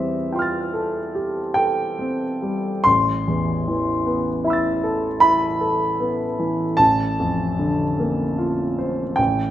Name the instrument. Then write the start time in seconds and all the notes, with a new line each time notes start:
grand piano
Already playing: E2 E3 G3 C4 E5
0.33 F4 G5 C6
0.39 F6 A6
0.74 A4
1.15 G4
1.54 A4 G5
1.99 C4
2.42 G3
2.84 A1 C6
3.28 E2
3.68 E3
4.06 B3
4.44 E4 E5 B5
4.50 E6 A6
4.84 A4
5.20 E4 B5
5.61 A4
6.00 B3
6.39 E3
6.77 A1 A5
7.20 F2
7.59 D3
8.00 A#3
8.38 F4
8.79 C5
9.16 A1 G5